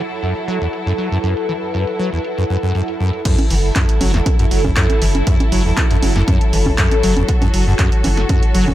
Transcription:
Already playing: F#3 E4 A4 C#5 F#5
0.00 B4
0.11 closed hi-hat
0.23 F#2, closed hi-hat
0.36 closed hi-hat
0.48 F#3
0.61 E2
0.73 closed hi-hat
0.86 F#2, closed hi-hat
0.98 F#3
1.11 F#2, closed hi-hat
1.23 F#2, closed hi-hat
1.37 closed hi-hat
1.49 E3
1.74 F#2, closed hi-hat
1.87 closed hi-hat
1.99 F#3
2.13 E2, closed hi-hat
2.24 closed hi-hat
2.38 F#2, closed hi-hat
2.50 F#2
2.63 F#2
2.75 F#2, closed hi-hat
2.88 closed hi-hat
3.00 F#2
3.13 closed hi-hat
3.25 F#2 F#3 E4 A4, kick, closed hi-hat, crash
3.38 closed hi-hat, high conga
3.50 F#1 E3, open hi-hat
3.73 F#2 C#5, kick, clap, closed hi-hat, high conga
3.89 closed hi-hat
4.01 F#1 F#3, open hi-hat, high conga
4.14 E2, snare, closed hi-hat
4.26 kick, closed hi-hat, high conga
4.39 F#2, closed hi-hat
4.51 F#1 F#3, open hi-hat
4.64 F#2, kick, high conga
4.76 F#2, kick, clap, closed hi-hat
4.90 closed hi-hat, high conga
5.02 F#1 E3, open hi-hat
5.15 closed hi-hat, high conga
5.27 F#2, kick, closed hi-hat
5.40 closed hi-hat, high conga
5.52 F#1 F#3, open hi-hat
5.65 E2
5.77 kick, clap, closed hi-hat, high conga
5.91 F#2, closed hi-hat
6.03 F#1 F#3, open hi-hat, high conga
6.16 F#2, snare, closed hi-hat
6.28 F#2, kick, closed hi-hat, high conga
6.41 closed hi-hat
6.53 F#1 E3, open hi-hat
6.66 kick, high conga
6.78 F#2, kick, clap, closed hi-hat
6.91 closed hi-hat, high conga
7.03 F#1 F#3, open hi-hat
7.17 E2, closed hi-hat, high conga
7.29 F#4, kick, closed hi-hat
7.42 F#2, closed hi-hat, high conga
7.54 F#1 F#3, open hi-hat
7.67 F#2
7.79 F#2, kick, clap, closed hi-hat, high conga
7.92 closed hi-hat
8.04 F#1 E3, open hi-hat, high conga
8.17 snare, closed hi-hat
8.29 F#2, kick, closed hi-hat, high conga
8.43 closed hi-hat
8.55 F#1 F#3, open hi-hat
8.68 E2, kick, high conga

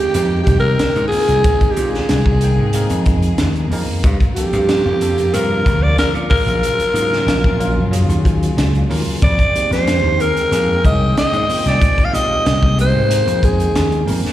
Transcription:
Already playing: D#3 G#3 A#3 C4 D#4 G4 G5
0.14 F2 G#3 A#3 C4 D#4 G4, closed hi-hat
0.43 C2 G4, kick, closed hi-hat
0.60 A#4
0.79 snare, closed hi-hat
0.96 G#2, closed hi-hat
1.08 G#4, open hi-hat
1.12 G#3 A#3 C4 D#4 G#4, muted slap bass stroke
1.28 C2, closed hi-hat
1.44 G#4, kick, closed hi-hat
1.61 muted slap bass stroke, kick, closed hi-hat
1.72 G4
1.76 A#2 G#3 A#3 C4 D#4 F4, closed hi-hat
1.90 G#4
1.94 snare
2.09 C2, snare, closed hi-hat
2.26 kick
2.41 G#3 A#3 C4 D#4 G5, closed hi-hat
2.58 G#2
2.73 G#3 A#3 C4 D#4 A#4, closed hi-hat
2.90 F2, closed hi-hat
3.06 kick, closed hi-hat
3.22 closed hi-hat
3.38 D#2, snare, closed hi-hat
3.56 closed hi-hat
3.70 F2 G#3 A#3 C4 D#4 A#4, open hi-hat
3.87 muted slap bass stroke
4.04 G2 C3 A#3 F4, kick, closed hi-hat
4.20 kick, closed hi-hat
4.35 F3 A#3 C4 D4 G4 A4, muted slap bass stroke, closed hi-hat
4.53 G2, closed hi-hat
4.69 snare, closed hi-hat
4.85 F2
5.01 F3 A#3 C4 D4 A4, closed hi-hat
5.18 closed hi-hat
5.33 G2 F3 A#3 C4 D4 A#4, closed hi-hat
5.66 D2, kick, closed hi-hat
5.83 D5
5.98 A#4, snare, closed hi-hat
6.14 A#2, closed hi-hat
6.29 C#3 F#3 G#3 A#3 C#4 F4 G#4 A#4, muted slap bass stroke, kick, open hi-hat
6.46 A#1, closed hi-hat
6.63 closed hi-hat
6.79 muted slap bass stroke, closed hi-hat
6.94 G#2 F#3 A#3 C#4 F4 A#4, closed hi-hat
7.13 snare
7.26 A#1, snare, closed hi-hat
7.44 kick
7.60 F#3 A#3 C#4 F4 A#4, closed hi-hat
7.76 F#2
7.91 F#3 A#3 C#4 F4 G#4, closed hi-hat
8.09 D#2, closed hi-hat
8.25 kick, closed hi-hat
8.43 closed hi-hat
8.57 C#2, snare, closed hi-hat
8.75 closed hi-hat
8.90 D#2 F#3 A#3 C#4 F4 A#4, open hi-hat
9.07 muted slap bass stroke
9.21 F2 D#3 A#3 D5 G5, kick, closed hi-hat
9.39 kick, closed hi-hat
9.55 G#3 A#3 C4 D#4 G4, muted slap bass stroke, closed hi-hat
9.71 F2 C5, snare, closed hi-hat
9.87 snare, closed hi-hat
10.03 D#2
10.19 G#3 A#3 C4 D#4 G#4 A#4, closed hi-hat
10.37 closed hi-hat
10.52 F2 G#3 A#3 C4 D#4 G#4, closed hi-hat
10.85 C2 D#5, kick, closed hi-hat
11.17 D#5, snare, closed hi-hat
11.33 G#2, closed hi-hat
11.49 G#3 A#3 C4 D#4 F4, muted slap bass stroke, open hi-hat
11.66 C2 D5, snare, closed hi-hat
11.82 kick, closed hi-hat
11.98 muted slap bass stroke, kick, closed hi-hat
12.05 F5
12.13 A#2 G#3 A#3 C4 D#4 G4 D#5, closed hi-hat
12.46 C2, snare, closed hi-hat
12.63 kick
12.77 G#3 A#3 C4 D#4 G4 C5, closed hi-hat
12.94 G#2
13.09 G#3 A#3 C4 D#4 G#4, closed hi-hat
13.27 F2, closed hi-hat
13.43 G#4, kick, closed hi-hat
13.60 closed hi-hat
13.75 D#2, snare, closed hi-hat
13.92 closed hi-hat
14.06 F2 G#3 A#3 C4 D#4 A#4, open hi-hat
14.25 muted slap bass stroke, snare

